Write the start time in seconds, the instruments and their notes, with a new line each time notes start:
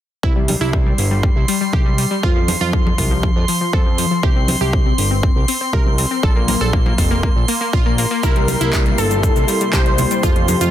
0.23 analog synth bass C2, synth pluck E4, synth texture C6, kick
0.36 synth pluck G3
0.48 synth pluck G3, open hi-hat, high conga
0.61 analog synth bass C2, synth pluck E4
0.73 synth pluck G3, kick
0.86 synth pluck G3
0.98 analog synth bass G1, open hi-hat
1.11 synth pluck G3
1.23 synth pluck G3, kick
1.36 analog synth bass C2
1.48 synth pluck G3, open hi-hat
1.61 synth pluck G3
1.73 analog synth bass C2, synth pluck G4, kick, high conga
1.86 synth pluck G3
1.98 synth pluck G3, open hi-hat
2.11 synth pluck G3
2.23 analog synth bass F2, synth pluck F4, kick
2.36 synth pluck F3
2.48 synth pluck F3, open hi-hat, high conga
2.61 analog synth bass F2, synth pluck F4
2.73 synth pluck F3, kick
2.86 synth pluck F3, high conga
2.98 analog synth bass C2, kick, open hi-hat
3.11 synth pluck F3
3.23 synth pluck F3, kick
3.36 analog synth bass F2
3.48 synth pluck F3, open hi-hat
3.61 synth pluck F3
3.73 analog synth bass F2, synth pluck A4, kick
3.86 synth pluck F3
3.98 synth pluck F3, open hi-hat
4.11 synth pluck F3
4.23 analog synth bass C2, synth pluck G4, kick
4.36 synth pluck C4
4.48 synth pluck C4, open hi-hat, high conga
4.61 analog synth bass C2, synth pluck G4
4.73 synth pluck C4, kick
4.86 synth pluck C4
4.98 analog synth bass G1, open hi-hat
5.11 synth pluck C4
5.23 synth pluck C4, kick
5.36 analog synth bass C2
5.48 synth pluck C4, open hi-hat
5.61 synth pluck C4
5.73 analog synth bass C2, synth pluck A#4, kick, high conga
5.86 synth pluck C4
5.98 synth pluck C4, open hi-hat
6.11 synth pluck C4
6.23 analog synth bass A#1, synth pluck A4, kick
6.36 synth pluck A#3
6.48 synth pluck A#3, open hi-hat, high conga
6.61 analog synth bass A#1, synth pluck A4
6.73 synth pluck A#3, kick
6.86 synth pluck A#3, high conga
6.98 analog synth bass F1, kick, open hi-hat
7.11 synth pluck A#3
7.23 synth pluck A#3, kick
7.36 analog synth bass A#1
7.48 synth pluck A#3, open hi-hat
7.61 synth pluck A#3
7.73 analog synth bass A#1, synth pluck F4, kick
7.86 synth pluck A#3
7.98 synth pluck A#3, open hi-hat
8.11 synth pluck A#3
8.23 analog synth bass C2, analog synth pad C3 A#3 E4 G4, synth pluck E4, digital synth lead A#4, kick, closed hi-hat, shaker
8.36 synth pluck G3, closed hi-hat
8.48 synth pluck G3, open hi-hat, high conga, shaker
8.61 analog synth bass C2, synth pluck E4, closed hi-hat, shaker
8.73 synth pluck G3, kick, clap, closed hi-hat, shaker
8.86 synth pluck G3, closed hi-hat
8.98 analog synth bass G1, digital synth lead A4, open hi-hat, shaker
9.11 synth pluck G3, closed hi-hat, shaker
9.23 synth pluck G3, kick, closed hi-hat, shaker
9.36 analog synth bass C2, closed hi-hat, shaker
9.48 synth pluck G3, open hi-hat, shaker
9.61 synth pluck G3, closed hi-hat, shaker
9.73 analog synth bass C2, synth pluck G4, digital synth lead C5, kick, clap, closed hi-hat, high conga, shaker
9.86 synth pluck G3, closed hi-hat
9.98 synth pluck G3, open hi-hat, low conga, shaker
10.11 synth pluck G3, closed hi-hat, shaker
10.23 analog synth bass F2, analog synth pad A3 F4, synth pluck F4, kick, closed hi-hat, shaker
10.36 synth pluck F3, closed hi-hat
10.48 synth pluck F3, open hi-hat, high conga, shaker
10.61 analog synth bass F2, synth pluck F4, closed hi-hat, shaker